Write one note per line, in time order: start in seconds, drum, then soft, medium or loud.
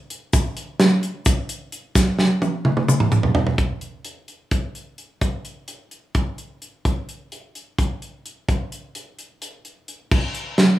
0.10 closed hi-hat medium
0.33 kick loud
0.33 closed hi-hat medium
0.33 shaker medium
0.57 closed hi-hat medium
0.80 snare loud
0.80 closed hi-hat medium
1.03 closed hi-hat medium
1.26 kick loud
1.26 closed hi-hat medium
1.26 shaker medium
1.49 closed hi-hat medium
1.49 shaker soft
1.72 closed hi-hat medium
1.95 kick loud
1.95 snare medium
1.95 shaker medium
2.19 snare medium
2.42 high tom medium
2.42 shaker soft
2.65 mid tom medium
2.77 mid tom medium
2.88 mid tom medium
2.88 shaker medium
3.00 mid tom medium
3.12 mid tom medium
3.12 shaker soft
3.23 floor tom medium
3.35 floor tom loud
3.47 floor tom medium
3.58 kick medium
3.58 closed hi-hat medium
3.81 closed hi-hat soft
4.05 closed hi-hat medium
4.28 closed hi-hat soft
4.51 kick medium
4.51 closed hi-hat medium
4.75 closed hi-hat soft
4.98 closed hi-hat soft
5.21 kick medium
5.21 closed hi-hat medium
5.45 closed hi-hat medium
5.68 closed hi-hat medium
5.91 closed hi-hat soft
6.15 kick medium
6.15 closed hi-hat medium
6.38 closed hi-hat soft
6.62 closed hi-hat soft
6.85 kick medium
6.85 closed hi-hat medium
7.09 closed hi-hat soft
7.32 closed hi-hat medium
7.55 closed hi-hat soft
7.78 kick medium
7.78 closed hi-hat medium
8.02 closed hi-hat soft
8.26 closed hi-hat soft
8.49 kick medium
8.49 closed hi-hat medium
8.72 closed hi-hat medium
8.95 closed hi-hat medium
9.19 closed hi-hat soft
9.42 closed hi-hat medium
9.65 closed hi-hat soft
9.88 closed hi-hat medium
10.11 kick loud
10.11 crash medium
10.35 closed hi-hat medium
10.58 snare medium
10.58 closed hi-hat medium